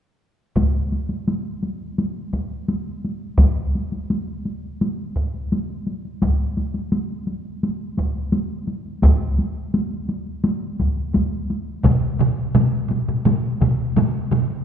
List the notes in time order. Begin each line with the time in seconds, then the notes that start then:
0.56 taiko, taiko high
0.75 taiko high
0.92 taiko high
1.09 taiko high
1.28 taiko high
1.45 taiko high
1.63 taiko high
1.81 taiko high
1.98 taiko high
2.16 taiko high
2.33 taiko, taiko high
2.51 taiko high
2.68 taiko high
2.87 taiko high
3.05 taiko high
3.21 taiko high
3.38 taiko, taiko high
3.57 taiko high
3.75 taiko high
3.92 taiko high
4.10 taiko high
4.28 taiko high
4.45 taiko high
4.64 taiko high
4.81 taiko high
4.98 taiko high
5.16 taiko
5.34 taiko high
5.52 taiko high
5.69 taiko high
5.87 taiko high
6.05 taiko high
6.22 taiko, taiko high
6.40 taiko high
6.57 taiko high
6.74 taiko high
6.92 taiko high
7.10 taiko high
7.27 taiko high
7.45 taiko high
7.63 taiko high
7.81 taiko high
7.97 taiko, taiko high
8.16 taiko high
8.32 taiko high
8.67 taiko high
8.85 taiko high
9.02 taiko, taiko high
9.21 taiko high
9.39 taiko high
9.74 taiko high
9.90 taiko high
10.09 taiko high
10.26 taiko high
10.44 taiko high
10.62 taiko high
10.79 taiko, taiko high
10.97 taiko high
11.14 taiko, taiko high
11.32 taiko high
11.50 taiko high
11.83 taiko, taiko low-mid, taiko mid, taiko high
12.03 taiko high
12.19 taiko low-mid, taiko mid, taiko high
12.38 taiko high
12.55 taiko low-mid, taiko mid, taiko high
12.73 taiko high
12.89 taiko low-mid, taiko mid, taiko high
13.08 taiko low-mid, taiko mid, taiko high
13.25 taiko low-mid, taiko mid, taiko high
13.44 taiko high
13.61 taiko, taiko low-mid, taiko mid, taiko high
13.79 taiko high
13.96 taiko low-mid, taiko mid, taiko high
14.31 taiko low-mid, taiko mid, taiko high
14.50 taiko high